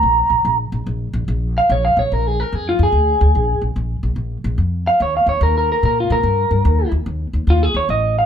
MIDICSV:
0, 0, Header, 1, 3, 480
1, 0, Start_track
1, 0, Tempo, 413223
1, 41, Time_signature, 4, 2, 24, 8
1, 9592, End_track
2, 0, Start_track
2, 0, Title_t, "Clean electric guitar"
2, 0, Program_c, 0, 27
2, 0, Note_on_c, 0, 82, 77
2, 660, Note_off_c, 0, 82, 0
2, 1832, Note_on_c, 0, 77, 95
2, 1972, Note_off_c, 0, 77, 0
2, 1995, Note_on_c, 0, 73, 86
2, 2134, Note_off_c, 0, 73, 0
2, 2145, Note_on_c, 0, 77, 77
2, 2289, Note_off_c, 0, 77, 0
2, 2311, Note_on_c, 0, 73, 80
2, 2477, Note_off_c, 0, 73, 0
2, 2477, Note_on_c, 0, 70, 79
2, 2638, Note_off_c, 0, 70, 0
2, 2638, Note_on_c, 0, 68, 81
2, 2786, Note_off_c, 0, 68, 0
2, 2786, Note_on_c, 0, 70, 80
2, 2963, Note_off_c, 0, 70, 0
2, 2963, Note_on_c, 0, 68, 85
2, 3098, Note_off_c, 0, 68, 0
2, 3123, Note_on_c, 0, 65, 77
2, 3258, Note_off_c, 0, 65, 0
2, 3289, Note_on_c, 0, 68, 99
2, 4197, Note_off_c, 0, 68, 0
2, 5662, Note_on_c, 0, 77, 98
2, 5807, Note_off_c, 0, 77, 0
2, 5834, Note_on_c, 0, 73, 82
2, 5973, Note_off_c, 0, 73, 0
2, 6002, Note_on_c, 0, 77, 71
2, 6138, Note_off_c, 0, 77, 0
2, 6144, Note_on_c, 0, 73, 76
2, 6288, Note_off_c, 0, 73, 0
2, 6306, Note_on_c, 0, 70, 76
2, 6450, Note_off_c, 0, 70, 0
2, 6477, Note_on_c, 0, 70, 76
2, 6615, Note_off_c, 0, 70, 0
2, 6646, Note_on_c, 0, 70, 74
2, 6779, Note_off_c, 0, 70, 0
2, 6800, Note_on_c, 0, 70, 86
2, 6936, Note_off_c, 0, 70, 0
2, 6972, Note_on_c, 0, 65, 67
2, 7103, Note_off_c, 0, 65, 0
2, 7111, Note_on_c, 0, 70, 92
2, 8027, Note_off_c, 0, 70, 0
2, 8713, Note_on_c, 0, 65, 88
2, 8862, Note_off_c, 0, 65, 0
2, 8862, Note_on_c, 0, 68, 67
2, 9006, Note_off_c, 0, 68, 0
2, 9021, Note_on_c, 0, 73, 80
2, 9166, Note_off_c, 0, 73, 0
2, 9179, Note_on_c, 0, 75, 77
2, 9480, Note_off_c, 0, 75, 0
2, 9509, Note_on_c, 0, 77, 81
2, 9592, Note_off_c, 0, 77, 0
2, 9592, End_track
3, 0, Start_track
3, 0, Title_t, "Upright bass"
3, 0, Program_c, 1, 32
3, 33, Note_on_c, 1, 34, 81
3, 267, Note_off_c, 1, 34, 0
3, 346, Note_on_c, 1, 34, 76
3, 471, Note_off_c, 1, 34, 0
3, 519, Note_on_c, 1, 34, 82
3, 750, Note_off_c, 1, 34, 0
3, 838, Note_on_c, 1, 34, 85
3, 958, Note_off_c, 1, 34, 0
3, 1004, Note_on_c, 1, 34, 83
3, 1234, Note_off_c, 1, 34, 0
3, 1318, Note_on_c, 1, 34, 92
3, 1438, Note_off_c, 1, 34, 0
3, 1485, Note_on_c, 1, 34, 89
3, 1835, Note_off_c, 1, 34, 0
3, 1969, Note_on_c, 1, 34, 92
3, 2197, Note_off_c, 1, 34, 0
3, 2285, Note_on_c, 1, 34, 82
3, 2403, Note_off_c, 1, 34, 0
3, 2459, Note_on_c, 1, 34, 79
3, 2804, Note_off_c, 1, 34, 0
3, 2933, Note_on_c, 1, 41, 79
3, 3159, Note_off_c, 1, 41, 0
3, 3239, Note_on_c, 1, 41, 87
3, 3359, Note_off_c, 1, 41, 0
3, 3394, Note_on_c, 1, 38, 83
3, 3627, Note_off_c, 1, 38, 0
3, 3728, Note_on_c, 1, 38, 90
3, 3844, Note_off_c, 1, 38, 0
3, 3891, Note_on_c, 1, 34, 84
3, 4118, Note_off_c, 1, 34, 0
3, 4200, Note_on_c, 1, 34, 81
3, 4319, Note_off_c, 1, 34, 0
3, 4365, Note_on_c, 1, 34, 80
3, 4595, Note_off_c, 1, 34, 0
3, 4680, Note_on_c, 1, 34, 80
3, 4800, Note_off_c, 1, 34, 0
3, 4831, Note_on_c, 1, 34, 78
3, 5065, Note_off_c, 1, 34, 0
3, 5160, Note_on_c, 1, 34, 88
3, 5280, Note_off_c, 1, 34, 0
3, 5318, Note_on_c, 1, 41, 81
3, 5671, Note_off_c, 1, 41, 0
3, 5810, Note_on_c, 1, 39, 84
3, 6038, Note_off_c, 1, 39, 0
3, 6115, Note_on_c, 1, 39, 79
3, 6236, Note_off_c, 1, 39, 0
3, 6281, Note_on_c, 1, 39, 85
3, 6632, Note_off_c, 1, 39, 0
3, 6771, Note_on_c, 1, 46, 88
3, 6998, Note_off_c, 1, 46, 0
3, 7087, Note_on_c, 1, 46, 88
3, 7204, Note_off_c, 1, 46, 0
3, 7240, Note_on_c, 1, 43, 87
3, 7471, Note_off_c, 1, 43, 0
3, 7559, Note_on_c, 1, 43, 87
3, 7679, Note_off_c, 1, 43, 0
3, 7723, Note_on_c, 1, 39, 93
3, 7953, Note_off_c, 1, 39, 0
3, 8032, Note_on_c, 1, 39, 80
3, 8154, Note_off_c, 1, 39, 0
3, 8201, Note_on_c, 1, 39, 86
3, 8432, Note_off_c, 1, 39, 0
3, 8519, Note_on_c, 1, 39, 78
3, 8638, Note_off_c, 1, 39, 0
3, 8677, Note_on_c, 1, 39, 80
3, 8909, Note_off_c, 1, 39, 0
3, 8995, Note_on_c, 1, 39, 86
3, 9115, Note_off_c, 1, 39, 0
3, 9162, Note_on_c, 1, 33, 85
3, 9512, Note_off_c, 1, 33, 0
3, 9592, End_track
0, 0, End_of_file